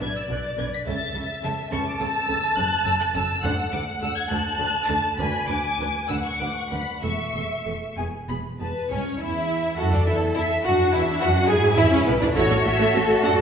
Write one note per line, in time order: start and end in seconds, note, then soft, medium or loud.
0.00 0.09 B1 medium
0.00 0.08 B2 medium
0.00 0.09 D4 medium
0.00 0.09 B4 medium
0.00 0.85 D5 medium
0.00 0.15 G#6 loud
0.16 0.22 E6 medium
0.28 0.38 B1 medium
0.28 0.36 B2 medium
0.28 0.38 D4 medium
0.28 0.38 B4 medium
0.28 0.44 F#6 medium
0.45 0.50 A6 loud
0.57 0.66 B1 medium
0.57 0.65 B2 medium
0.57 0.66 D4 medium
0.57 0.66 B4 medium
0.57 0.64 G#6 medium
0.73 0.79 B6 loud
0.86 0.95 C#2 medium
0.86 0.94 C#3 medium
0.86 0.94 C#4 medium
0.86 0.94 A4 medium
0.86 1.71 E5 medium
0.86 1.42 A6 loud
1.14 1.22 C#2 medium
1.14 1.22 C#3 medium
1.14 1.22 C#4 medium
1.14 1.22 A4 medium
1.43 1.52 C#2 medium
1.43 1.51 C#3 medium
1.43 1.51 C#4 medium
1.43 1.51 A4 medium
1.43 1.52 A5 medium
1.72 1.80 C#2 loud
1.72 1.80 C#3 medium
1.72 1.80 C#4 medium
1.72 1.80 A4 medium
1.72 3.40 A5 loud
1.72 1.78 C#6 loud
1.87 2.00 D6 medium
2.00 2.08 C#2 medium
2.00 2.08 C#3 medium
2.00 2.08 C#4 medium
2.00 2.08 A4 medium
2.00 2.56 E6 loud
2.28 2.36 C#2 medium
2.28 2.36 C#3 medium
2.28 2.36 C#4 medium
2.28 2.36 A4 medium
2.56 2.64 F#1 medium
2.56 2.65 F#2 medium
2.56 2.64 C#4 medium
2.56 2.65 A4 medium
2.56 2.85 F#6 loud
2.84 2.93 F#1 medium
2.84 2.92 F#2 medium
2.84 2.94 C#4 medium
2.84 2.93 A4 medium
2.84 2.92 E6 loud
3.00 3.05 F#6 loud
3.14 3.23 F#1 medium
3.14 3.22 F#2 medium
3.14 3.22 C#4 medium
3.14 3.23 A4 medium
3.14 3.43 E6 loud
3.42 3.51 D2 loud
3.42 3.52 D2 loud
3.42 3.52 D4 medium
3.42 3.52 A4 medium
3.42 4.29 F#5 loud
3.42 3.57 F#6 loud
3.58 3.64 E6 medium
3.72 3.80 D2 medium
3.72 3.81 D2 medium
3.72 3.81 D4 medium
3.72 3.81 A4 medium
3.72 3.80 D6 loud
4.01 4.09 D2 medium
4.01 4.10 D4 medium
4.01 4.10 A4 medium
4.01 4.16 E6 loud
4.16 4.31 G#6 loud
4.30 4.38 D2 medium
4.30 4.38 D2 loud
4.30 4.38 D4 medium
4.30 4.38 A4 medium
4.30 5.20 A5 loud
4.30 4.88 F#6 loud
4.59 4.67 D2 medium
4.59 4.68 D2 medium
4.59 4.68 D4 medium
4.59 4.68 A4 medium
4.88 4.96 D2 medium
4.88 4.97 D4 medium
4.88 4.97 A4 medium
4.88 5.19 A5 loud
5.18 5.26 D2 loud
5.18 5.27 D2 loud
5.18 5.28 D4 medium
5.18 5.28 B4 medium
5.18 6.08 G#5 loud
5.18 5.48 B5 loud
5.49 5.57 D2 medium
5.49 5.58 D2 medium
5.49 5.58 D4 medium
5.49 5.58 B4 medium
5.49 6.09 D6 loud
5.79 5.87 D2 medium
5.79 5.88 D4 medium
5.79 5.88 B4 medium
6.08 6.17 D2 medium
6.08 6.18 D4 medium
6.08 6.18 B4 medium
6.08 7.03 F#5 medium
6.08 6.15 E6 loud
6.24 6.39 C#6 loud
6.39 6.48 D2 medium
6.39 6.48 D4 medium
6.39 6.48 B4 medium
6.39 6.55 D6 loud
6.55 6.71 C#6 medium
6.71 6.79 D2 medium
6.71 6.80 D2 medium
6.71 6.79 D4 medium
6.71 6.79 B4 medium
6.71 7.02 B5 loud
7.03 7.12 E1 medium
7.03 7.11 E2 medium
7.03 7.11 A3 medium
7.03 7.11 A4 medium
7.03 7.89 E5 medium
7.03 7.95 C#6 loud
7.34 7.43 E1 medium
7.34 7.42 E2 medium
7.34 7.42 A3 medium
7.34 7.42 A4 medium
7.66 7.74 E1 medium
7.66 7.74 E2 medium
7.66 7.74 A3 medium
7.66 7.74 A4 medium
7.97 8.06 E1 medium
7.97 8.05 E2 medium
7.97 8.06 B3 medium
7.97 8.06 G#4 medium
7.97 8.05 G#5 medium
8.28 8.36 E1 medium
8.28 8.36 E2 medium
8.28 8.37 B3 medium
8.28 8.37 G#4 medium
8.28 8.37 B5 medium
8.59 8.69 E1 medium
8.59 8.68 E2 medium
8.59 8.68 B3 soft
8.59 8.68 G#4 medium
8.59 8.88 B4 medium
8.59 8.90 A5 medium
8.90 8.99 C#2 loud
8.90 8.99 C#4 medium
8.90 9.18 C#4 loud
8.90 9.19 C#5 medium
9.19 9.78 E2 medium
9.19 9.77 E4 medium
9.19 9.78 E4 medium
9.19 9.78 E5 medium
9.77 9.93 F#2 loud
9.77 9.83 F#4 medium
9.77 9.92 F#4 medium
9.77 10.61 A4 loud
9.77 9.93 F#5 medium
9.92 10.07 D2 medium
9.92 9.98 D4 medium
9.92 10.07 D4 medium
9.92 10.07 D5 loud
10.06 10.35 E2 loud
10.06 10.14 E4 medium
10.06 10.35 E4 medium
10.06 10.14 E5 loud
10.35 10.44 E2 medium
10.35 10.43 E4 medium
10.35 10.44 E4 medium
10.35 10.64 E5 loud
10.63 10.73 F#2 loud
10.63 11.48 D4 loud
10.63 10.92 F#4 loud
10.63 10.93 F#4 loud
10.63 10.92 F#5 loud
10.92 11.21 E2 loud
10.92 11.00 E4 loud
10.92 11.21 E4 loud
10.92 11.21 E5 loud
11.20 11.50 F#2 loud
11.20 11.49 F#4 loud
11.20 11.29 F#4 loud
11.20 11.49 F#5 loud
11.48 11.78 G#2 loud
11.48 12.36 E4 loud
11.48 11.56 G#4 loud
11.48 11.78 G#4 loud
11.48 11.77 G#5 loud
11.76 11.84 E2 loud
11.76 11.83 E4 loud
11.76 11.92 E4 loud
11.76 11.91 E5 loud
11.91 11.98 C#2 loud
11.91 12.06 C#4 loud
11.91 12.07 C#4 loud
11.91 12.07 C#5 loud
12.06 12.13 B1 loud
12.06 12.12 B3 loud
12.06 12.13 B3 loud
12.06 12.12 B4 loud
12.20 12.27 D2 loud
12.20 12.35 D4 medium
12.20 12.27 D4 loud
12.20 12.27 D5 loud
12.34 12.42 A1 loud
12.34 12.41 A3 loud
12.34 12.41 E4 loud
12.34 13.41 F#4 loud
12.34 13.41 A4 loud
12.34 12.64 C#5 loud
12.34 13.21 C#5 loud
12.50 12.57 A1 medium
12.50 12.56 A3 medium
12.50 12.56 C#4 medium
12.64 12.71 A1 medium
12.64 12.71 A3 medium
12.64 13.22 E5 loud
12.79 12.85 A1 loud
12.79 12.85 A3 loud
12.79 12.85 E4 loud
12.94 13.00 A1 medium
12.94 13.00 A3 medium
12.94 13.01 C#4 medium
13.08 13.15 A1 medium
13.08 13.15 A3 medium
13.23 13.29 F#2 loud
13.23 13.29 A3 medium
13.23 13.29 D4 loud
13.23 13.41 D5 medium
13.23 13.32 F#5 loud
13.38 13.41 F#2 medium